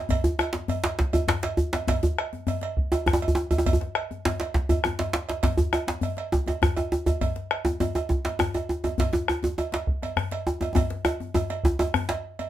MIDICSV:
0, 0, Header, 1, 4, 480
1, 0, Start_track
1, 0, Tempo, 296150
1, 160, Time_signature, 12, 3, 24, 8
1, 20254, End_track
2, 0, Start_track
2, 0, Title_t, "Bombo"
2, 172, Note_on_c, 9, 37, 29
2, 172, Note_on_c, 9, 43, 96
2, 334, Note_off_c, 9, 37, 0
2, 334, Note_off_c, 9, 43, 0
2, 636, Note_on_c, 9, 37, 102
2, 798, Note_off_c, 9, 37, 0
2, 1117, Note_on_c, 9, 37, 30
2, 1279, Note_off_c, 9, 37, 0
2, 1614, Note_on_c, 9, 43, 100
2, 1776, Note_off_c, 9, 43, 0
2, 1866, Note_on_c, 9, 37, 29
2, 2028, Note_off_c, 9, 37, 0
2, 2090, Note_on_c, 9, 37, 97
2, 2252, Note_off_c, 9, 37, 0
2, 3060, Note_on_c, 9, 37, 31
2, 3060, Note_on_c, 9, 43, 97
2, 3222, Note_off_c, 9, 37, 0
2, 3222, Note_off_c, 9, 43, 0
2, 3541, Note_on_c, 9, 37, 101
2, 3703, Note_off_c, 9, 37, 0
2, 4001, Note_on_c, 9, 37, 34
2, 4164, Note_off_c, 9, 37, 0
2, 4488, Note_on_c, 9, 43, 105
2, 4650, Note_off_c, 9, 43, 0
2, 4747, Note_on_c, 9, 37, 34
2, 4909, Note_off_c, 9, 37, 0
2, 4985, Note_on_c, 9, 37, 106
2, 5147, Note_off_c, 9, 37, 0
2, 5930, Note_on_c, 9, 43, 110
2, 6092, Note_off_c, 9, 43, 0
2, 6171, Note_on_c, 9, 37, 31
2, 6333, Note_off_c, 9, 37, 0
2, 6404, Note_on_c, 9, 37, 112
2, 6567, Note_off_c, 9, 37, 0
2, 7144, Note_on_c, 9, 37, 33
2, 7306, Note_off_c, 9, 37, 0
2, 7368, Note_on_c, 9, 43, 103
2, 7530, Note_off_c, 9, 43, 0
2, 7841, Note_on_c, 9, 37, 112
2, 8003, Note_off_c, 9, 37, 0
2, 8336, Note_on_c, 9, 37, 32
2, 8498, Note_off_c, 9, 37, 0
2, 8805, Note_on_c, 9, 37, 34
2, 8805, Note_on_c, 9, 43, 97
2, 8968, Note_off_c, 9, 37, 0
2, 8968, Note_off_c, 9, 43, 0
2, 9283, Note_on_c, 9, 37, 99
2, 9445, Note_off_c, 9, 37, 0
2, 9774, Note_on_c, 9, 37, 35
2, 9936, Note_off_c, 9, 37, 0
2, 10262, Note_on_c, 9, 43, 105
2, 10424, Note_off_c, 9, 43, 0
2, 10519, Note_on_c, 9, 37, 31
2, 10681, Note_off_c, 9, 37, 0
2, 10741, Note_on_c, 9, 37, 108
2, 10903, Note_off_c, 9, 37, 0
2, 11693, Note_on_c, 9, 37, 34
2, 11693, Note_on_c, 9, 43, 96
2, 11855, Note_off_c, 9, 37, 0
2, 11855, Note_off_c, 9, 43, 0
2, 12170, Note_on_c, 9, 37, 109
2, 12332, Note_off_c, 9, 37, 0
2, 12650, Note_on_c, 9, 37, 33
2, 12812, Note_off_c, 9, 37, 0
2, 13129, Note_on_c, 9, 43, 108
2, 13291, Note_off_c, 9, 43, 0
2, 13387, Note_on_c, 9, 37, 34
2, 13549, Note_off_c, 9, 37, 0
2, 13612, Note_on_c, 9, 37, 115
2, 13774, Note_off_c, 9, 37, 0
2, 14574, Note_on_c, 9, 37, 33
2, 14574, Note_on_c, 9, 43, 107
2, 14736, Note_off_c, 9, 37, 0
2, 14736, Note_off_c, 9, 43, 0
2, 15046, Note_on_c, 9, 37, 115
2, 15208, Note_off_c, 9, 37, 0
2, 15531, Note_on_c, 9, 37, 34
2, 15693, Note_off_c, 9, 37, 0
2, 16001, Note_on_c, 9, 43, 108
2, 16163, Note_off_c, 9, 43, 0
2, 16247, Note_on_c, 9, 37, 31
2, 16409, Note_off_c, 9, 37, 0
2, 16483, Note_on_c, 9, 37, 103
2, 16645, Note_off_c, 9, 37, 0
2, 17441, Note_on_c, 9, 37, 30
2, 17441, Note_on_c, 9, 43, 92
2, 17603, Note_off_c, 9, 37, 0
2, 17603, Note_off_c, 9, 43, 0
2, 17677, Note_on_c, 9, 37, 29
2, 17839, Note_off_c, 9, 37, 0
2, 17906, Note_on_c, 9, 37, 99
2, 18068, Note_off_c, 9, 37, 0
2, 18636, Note_on_c, 9, 37, 28
2, 18798, Note_off_c, 9, 37, 0
2, 18859, Note_on_c, 9, 43, 99
2, 19021, Note_off_c, 9, 43, 0
2, 19124, Note_on_c, 9, 37, 31
2, 19287, Note_off_c, 9, 37, 0
2, 19354, Note_on_c, 9, 37, 109
2, 19516, Note_off_c, 9, 37, 0
2, 20254, End_track
3, 0, Start_track
3, 0, Title_t, "Djembe"
3, 144, Note_on_c, 9, 64, 81
3, 306, Note_off_c, 9, 64, 0
3, 389, Note_on_c, 9, 64, 81
3, 394, Note_on_c, 9, 62, 66
3, 551, Note_off_c, 9, 64, 0
3, 556, Note_off_c, 9, 62, 0
3, 630, Note_on_c, 9, 63, 80
3, 793, Note_off_c, 9, 63, 0
3, 855, Note_on_c, 9, 62, 85
3, 866, Note_on_c, 9, 63, 62
3, 1017, Note_off_c, 9, 62, 0
3, 1029, Note_off_c, 9, 63, 0
3, 1107, Note_on_c, 9, 64, 79
3, 1269, Note_off_c, 9, 64, 0
3, 1355, Note_on_c, 9, 62, 105
3, 1364, Note_off_c, 9, 62, 0
3, 1364, Note_on_c, 9, 62, 60
3, 1526, Note_off_c, 9, 62, 0
3, 1599, Note_on_c, 9, 62, 83
3, 1761, Note_off_c, 9, 62, 0
3, 1830, Note_on_c, 9, 63, 67
3, 1845, Note_on_c, 9, 64, 84
3, 1992, Note_off_c, 9, 63, 0
3, 2007, Note_off_c, 9, 64, 0
3, 2071, Note_on_c, 9, 62, 26
3, 2071, Note_on_c, 9, 64, 83
3, 2083, Note_off_c, 9, 62, 0
3, 2083, Note_on_c, 9, 62, 107
3, 2233, Note_off_c, 9, 64, 0
3, 2245, Note_off_c, 9, 62, 0
3, 2313, Note_on_c, 9, 62, 59
3, 2318, Note_off_c, 9, 62, 0
3, 2318, Note_on_c, 9, 62, 76
3, 2480, Note_off_c, 9, 62, 0
3, 2549, Note_on_c, 9, 64, 84
3, 2711, Note_off_c, 9, 64, 0
3, 2802, Note_on_c, 9, 62, 96
3, 2809, Note_on_c, 9, 63, 66
3, 2964, Note_off_c, 9, 62, 0
3, 2971, Note_off_c, 9, 63, 0
3, 3039, Note_on_c, 9, 64, 77
3, 3051, Note_on_c, 9, 62, 82
3, 3201, Note_off_c, 9, 64, 0
3, 3213, Note_off_c, 9, 62, 0
3, 3288, Note_on_c, 9, 62, 63
3, 3293, Note_on_c, 9, 64, 84
3, 3450, Note_off_c, 9, 62, 0
3, 3455, Note_off_c, 9, 64, 0
3, 3773, Note_on_c, 9, 63, 60
3, 3935, Note_off_c, 9, 63, 0
3, 3999, Note_on_c, 9, 64, 75
3, 4161, Note_off_c, 9, 64, 0
3, 4236, Note_on_c, 9, 62, 60
3, 4398, Note_off_c, 9, 62, 0
3, 4728, Note_on_c, 9, 63, 104
3, 4890, Note_off_c, 9, 63, 0
3, 4966, Note_on_c, 9, 64, 85
3, 4975, Note_off_c, 9, 64, 0
3, 4975, Note_on_c, 9, 62, 25
3, 4975, Note_on_c, 9, 64, 78
3, 5078, Note_on_c, 9, 63, 114
3, 5137, Note_off_c, 9, 62, 0
3, 5137, Note_off_c, 9, 64, 0
3, 5233, Note_on_c, 9, 62, 56
3, 5240, Note_off_c, 9, 63, 0
3, 5316, Note_on_c, 9, 64, 82
3, 5395, Note_off_c, 9, 62, 0
3, 5430, Note_on_c, 9, 63, 114
3, 5478, Note_off_c, 9, 64, 0
3, 5592, Note_off_c, 9, 63, 0
3, 5685, Note_on_c, 9, 64, 75
3, 5705, Note_on_c, 9, 63, 62
3, 5809, Note_off_c, 9, 63, 0
3, 5809, Note_on_c, 9, 63, 101
3, 5847, Note_off_c, 9, 64, 0
3, 5943, Note_on_c, 9, 64, 77
3, 5971, Note_off_c, 9, 63, 0
3, 6049, Note_off_c, 9, 64, 0
3, 6049, Note_on_c, 9, 64, 80
3, 6180, Note_on_c, 9, 62, 67
3, 6211, Note_off_c, 9, 64, 0
3, 6342, Note_off_c, 9, 62, 0
3, 6659, Note_on_c, 9, 62, 24
3, 6659, Note_on_c, 9, 63, 60
3, 6821, Note_off_c, 9, 62, 0
3, 6821, Note_off_c, 9, 63, 0
3, 6894, Note_on_c, 9, 62, 106
3, 6897, Note_on_c, 9, 64, 70
3, 7056, Note_off_c, 9, 62, 0
3, 7059, Note_off_c, 9, 64, 0
3, 7126, Note_on_c, 9, 62, 76
3, 7147, Note_off_c, 9, 62, 0
3, 7147, Note_on_c, 9, 62, 63
3, 7309, Note_off_c, 9, 62, 0
3, 7365, Note_on_c, 9, 62, 81
3, 7527, Note_off_c, 9, 62, 0
3, 7606, Note_on_c, 9, 64, 80
3, 7618, Note_off_c, 9, 64, 0
3, 7618, Note_on_c, 9, 64, 46
3, 7780, Note_off_c, 9, 64, 0
3, 7854, Note_on_c, 9, 63, 82
3, 7870, Note_on_c, 9, 64, 55
3, 8016, Note_off_c, 9, 63, 0
3, 8033, Note_off_c, 9, 64, 0
3, 8087, Note_on_c, 9, 62, 78
3, 8097, Note_on_c, 9, 64, 52
3, 8249, Note_off_c, 9, 62, 0
3, 8259, Note_off_c, 9, 64, 0
3, 8321, Note_on_c, 9, 62, 107
3, 8344, Note_off_c, 9, 62, 0
3, 8344, Note_on_c, 9, 62, 58
3, 8506, Note_off_c, 9, 62, 0
3, 8578, Note_on_c, 9, 62, 69
3, 8582, Note_off_c, 9, 62, 0
3, 8582, Note_on_c, 9, 62, 80
3, 8744, Note_off_c, 9, 62, 0
3, 8806, Note_on_c, 9, 64, 81
3, 8808, Note_on_c, 9, 62, 83
3, 8968, Note_off_c, 9, 64, 0
3, 8970, Note_off_c, 9, 62, 0
3, 9035, Note_on_c, 9, 64, 85
3, 9049, Note_on_c, 9, 62, 65
3, 9198, Note_off_c, 9, 64, 0
3, 9211, Note_off_c, 9, 62, 0
3, 9289, Note_on_c, 9, 63, 78
3, 9451, Note_off_c, 9, 63, 0
3, 9523, Note_on_c, 9, 63, 62
3, 9532, Note_on_c, 9, 62, 87
3, 9685, Note_off_c, 9, 63, 0
3, 9694, Note_off_c, 9, 62, 0
3, 9747, Note_on_c, 9, 64, 72
3, 9909, Note_off_c, 9, 64, 0
3, 9997, Note_on_c, 9, 62, 56
3, 10159, Note_off_c, 9, 62, 0
3, 10249, Note_on_c, 9, 63, 111
3, 10411, Note_off_c, 9, 63, 0
3, 10476, Note_on_c, 9, 63, 55
3, 10503, Note_off_c, 9, 63, 0
3, 10503, Note_on_c, 9, 63, 82
3, 10665, Note_off_c, 9, 63, 0
3, 10727, Note_on_c, 9, 62, 24
3, 10727, Note_on_c, 9, 64, 84
3, 10742, Note_off_c, 9, 64, 0
3, 10742, Note_on_c, 9, 64, 84
3, 10889, Note_off_c, 9, 62, 0
3, 10904, Note_off_c, 9, 64, 0
3, 10972, Note_on_c, 9, 62, 51
3, 10974, Note_on_c, 9, 63, 96
3, 11134, Note_off_c, 9, 62, 0
3, 11136, Note_off_c, 9, 63, 0
3, 11216, Note_on_c, 9, 63, 88
3, 11378, Note_off_c, 9, 63, 0
3, 11445, Note_on_c, 9, 63, 54
3, 11449, Note_on_c, 9, 64, 83
3, 11607, Note_off_c, 9, 63, 0
3, 11611, Note_off_c, 9, 64, 0
3, 11688, Note_on_c, 9, 64, 66
3, 11850, Note_off_c, 9, 64, 0
3, 11927, Note_on_c, 9, 62, 59
3, 12089, Note_off_c, 9, 62, 0
3, 12394, Note_on_c, 9, 63, 115
3, 12413, Note_off_c, 9, 63, 0
3, 12413, Note_on_c, 9, 63, 63
3, 12575, Note_off_c, 9, 63, 0
3, 12647, Note_on_c, 9, 63, 84
3, 12647, Note_on_c, 9, 64, 73
3, 12809, Note_off_c, 9, 63, 0
3, 12809, Note_off_c, 9, 64, 0
3, 12887, Note_on_c, 9, 63, 81
3, 12897, Note_on_c, 9, 62, 61
3, 13049, Note_off_c, 9, 63, 0
3, 13059, Note_off_c, 9, 62, 0
3, 13115, Note_on_c, 9, 63, 86
3, 13277, Note_off_c, 9, 63, 0
3, 13368, Note_on_c, 9, 62, 80
3, 13376, Note_on_c, 9, 63, 59
3, 13530, Note_off_c, 9, 62, 0
3, 13538, Note_off_c, 9, 63, 0
3, 13601, Note_on_c, 9, 63, 107
3, 13612, Note_on_c, 9, 62, 26
3, 13612, Note_on_c, 9, 64, 81
3, 13763, Note_off_c, 9, 63, 0
3, 13774, Note_off_c, 9, 62, 0
3, 13774, Note_off_c, 9, 64, 0
3, 13848, Note_on_c, 9, 62, 62
3, 13851, Note_on_c, 9, 63, 76
3, 14010, Note_off_c, 9, 62, 0
3, 14013, Note_off_c, 9, 63, 0
3, 14091, Note_on_c, 9, 63, 84
3, 14253, Note_off_c, 9, 63, 0
3, 14323, Note_on_c, 9, 63, 69
3, 14327, Note_off_c, 9, 63, 0
3, 14327, Note_on_c, 9, 63, 81
3, 14489, Note_off_c, 9, 63, 0
3, 14553, Note_on_c, 9, 64, 79
3, 14582, Note_on_c, 9, 62, 78
3, 14715, Note_off_c, 9, 64, 0
3, 14744, Note_off_c, 9, 62, 0
3, 14793, Note_on_c, 9, 62, 67
3, 14801, Note_on_c, 9, 63, 102
3, 14955, Note_off_c, 9, 62, 0
3, 14964, Note_off_c, 9, 63, 0
3, 15062, Note_on_c, 9, 63, 85
3, 15224, Note_off_c, 9, 63, 0
3, 15278, Note_on_c, 9, 63, 64
3, 15298, Note_off_c, 9, 63, 0
3, 15298, Note_on_c, 9, 63, 91
3, 15460, Note_off_c, 9, 63, 0
3, 15528, Note_on_c, 9, 63, 80
3, 15690, Note_off_c, 9, 63, 0
3, 15758, Note_on_c, 9, 62, 64
3, 15782, Note_off_c, 9, 62, 0
3, 15782, Note_on_c, 9, 62, 84
3, 15944, Note_off_c, 9, 62, 0
3, 16250, Note_on_c, 9, 63, 66
3, 16413, Note_off_c, 9, 63, 0
3, 16477, Note_on_c, 9, 62, 26
3, 16477, Note_on_c, 9, 64, 86
3, 16639, Note_off_c, 9, 62, 0
3, 16639, Note_off_c, 9, 64, 0
3, 16717, Note_on_c, 9, 62, 66
3, 16879, Note_off_c, 9, 62, 0
3, 16963, Note_on_c, 9, 63, 88
3, 17125, Note_off_c, 9, 63, 0
3, 17192, Note_on_c, 9, 63, 77
3, 17198, Note_off_c, 9, 63, 0
3, 17198, Note_on_c, 9, 63, 76
3, 17361, Note_off_c, 9, 63, 0
3, 17422, Note_on_c, 9, 63, 92
3, 17430, Note_on_c, 9, 64, 92
3, 17584, Note_off_c, 9, 63, 0
3, 17592, Note_off_c, 9, 64, 0
3, 17672, Note_on_c, 9, 62, 72
3, 17834, Note_off_c, 9, 62, 0
3, 17905, Note_on_c, 9, 63, 102
3, 18067, Note_off_c, 9, 63, 0
3, 18158, Note_on_c, 9, 63, 70
3, 18320, Note_off_c, 9, 63, 0
3, 18387, Note_on_c, 9, 63, 105
3, 18395, Note_on_c, 9, 62, 26
3, 18395, Note_on_c, 9, 64, 78
3, 18549, Note_off_c, 9, 63, 0
3, 18558, Note_off_c, 9, 62, 0
3, 18558, Note_off_c, 9, 64, 0
3, 18639, Note_on_c, 9, 62, 61
3, 18801, Note_off_c, 9, 62, 0
3, 18880, Note_on_c, 9, 63, 110
3, 18886, Note_on_c, 9, 62, 27
3, 19042, Note_off_c, 9, 63, 0
3, 19048, Note_off_c, 9, 62, 0
3, 19114, Note_on_c, 9, 63, 107
3, 19131, Note_off_c, 9, 63, 0
3, 19131, Note_on_c, 9, 62, 26
3, 19131, Note_on_c, 9, 63, 62
3, 19293, Note_off_c, 9, 62, 0
3, 19293, Note_off_c, 9, 63, 0
3, 19355, Note_on_c, 9, 64, 85
3, 19517, Note_off_c, 9, 64, 0
3, 19592, Note_on_c, 9, 62, 93
3, 19609, Note_off_c, 9, 62, 0
3, 19609, Note_on_c, 9, 62, 61
3, 19771, Note_off_c, 9, 62, 0
3, 20084, Note_on_c, 9, 62, 24
3, 20084, Note_on_c, 9, 63, 62
3, 20246, Note_off_c, 9, 62, 0
3, 20246, Note_off_c, 9, 63, 0
3, 20254, End_track
4, 0, Start_track
4, 0, Title_t, "Drums"
4, 170, Note_on_c, 9, 56, 68
4, 332, Note_off_c, 9, 56, 0
4, 662, Note_on_c, 9, 56, 52
4, 824, Note_off_c, 9, 56, 0
4, 1126, Note_on_c, 9, 56, 53
4, 1288, Note_off_c, 9, 56, 0
4, 1366, Note_on_c, 9, 56, 55
4, 1528, Note_off_c, 9, 56, 0
4, 1835, Note_on_c, 9, 56, 55
4, 1997, Note_off_c, 9, 56, 0
4, 2333, Note_on_c, 9, 56, 60
4, 2495, Note_off_c, 9, 56, 0
4, 2818, Note_on_c, 9, 56, 47
4, 2980, Note_off_c, 9, 56, 0
4, 3062, Note_on_c, 9, 56, 62
4, 3224, Note_off_c, 9, 56, 0
4, 3541, Note_on_c, 9, 56, 49
4, 3703, Note_off_c, 9, 56, 0
4, 4023, Note_on_c, 9, 56, 51
4, 4186, Note_off_c, 9, 56, 0
4, 4260, Note_on_c, 9, 56, 55
4, 4422, Note_off_c, 9, 56, 0
4, 4744, Note_on_c, 9, 56, 53
4, 4906, Note_off_c, 9, 56, 0
4, 5223, Note_on_c, 9, 56, 56
4, 5385, Note_off_c, 9, 56, 0
4, 5684, Note_on_c, 9, 56, 49
4, 5846, Note_off_c, 9, 56, 0
4, 5939, Note_on_c, 9, 56, 67
4, 6101, Note_off_c, 9, 56, 0
4, 6413, Note_on_c, 9, 56, 53
4, 6575, Note_off_c, 9, 56, 0
4, 6905, Note_on_c, 9, 56, 48
4, 7067, Note_off_c, 9, 56, 0
4, 7145, Note_on_c, 9, 56, 52
4, 7307, Note_off_c, 9, 56, 0
4, 7614, Note_on_c, 9, 56, 47
4, 7776, Note_off_c, 9, 56, 0
4, 8093, Note_on_c, 9, 56, 51
4, 8255, Note_off_c, 9, 56, 0
4, 8567, Note_on_c, 9, 56, 46
4, 8729, Note_off_c, 9, 56, 0
4, 8798, Note_on_c, 9, 56, 61
4, 8960, Note_off_c, 9, 56, 0
4, 9286, Note_on_c, 9, 56, 51
4, 9448, Note_off_c, 9, 56, 0
4, 9776, Note_on_c, 9, 56, 45
4, 9938, Note_off_c, 9, 56, 0
4, 10016, Note_on_c, 9, 56, 49
4, 10178, Note_off_c, 9, 56, 0
4, 10495, Note_on_c, 9, 56, 45
4, 10657, Note_off_c, 9, 56, 0
4, 10965, Note_on_c, 9, 56, 48
4, 11127, Note_off_c, 9, 56, 0
4, 11458, Note_on_c, 9, 56, 44
4, 11620, Note_off_c, 9, 56, 0
4, 11692, Note_on_c, 9, 56, 55
4, 11854, Note_off_c, 9, 56, 0
4, 12171, Note_on_c, 9, 56, 44
4, 12333, Note_off_c, 9, 56, 0
4, 12652, Note_on_c, 9, 56, 49
4, 12814, Note_off_c, 9, 56, 0
4, 12903, Note_on_c, 9, 56, 48
4, 13065, Note_off_c, 9, 56, 0
4, 13380, Note_on_c, 9, 56, 47
4, 13542, Note_off_c, 9, 56, 0
4, 13854, Note_on_c, 9, 56, 45
4, 14017, Note_off_c, 9, 56, 0
4, 14331, Note_on_c, 9, 56, 43
4, 14494, Note_off_c, 9, 56, 0
4, 14587, Note_on_c, 9, 56, 60
4, 14749, Note_off_c, 9, 56, 0
4, 15537, Note_on_c, 9, 56, 51
4, 15699, Note_off_c, 9, 56, 0
4, 15782, Note_on_c, 9, 56, 53
4, 15944, Note_off_c, 9, 56, 0
4, 16259, Note_on_c, 9, 56, 53
4, 16421, Note_off_c, 9, 56, 0
4, 16729, Note_on_c, 9, 56, 57
4, 16891, Note_off_c, 9, 56, 0
4, 17220, Note_on_c, 9, 56, 48
4, 17382, Note_off_c, 9, 56, 0
4, 17444, Note_on_c, 9, 56, 63
4, 17606, Note_off_c, 9, 56, 0
4, 17920, Note_on_c, 9, 56, 50
4, 18082, Note_off_c, 9, 56, 0
4, 18402, Note_on_c, 9, 56, 56
4, 18564, Note_off_c, 9, 56, 0
4, 18642, Note_on_c, 9, 56, 58
4, 18805, Note_off_c, 9, 56, 0
4, 19120, Note_on_c, 9, 56, 54
4, 19282, Note_off_c, 9, 56, 0
4, 19605, Note_on_c, 9, 56, 61
4, 19767, Note_off_c, 9, 56, 0
4, 20084, Note_on_c, 9, 56, 51
4, 20246, Note_off_c, 9, 56, 0
4, 20254, End_track
0, 0, End_of_file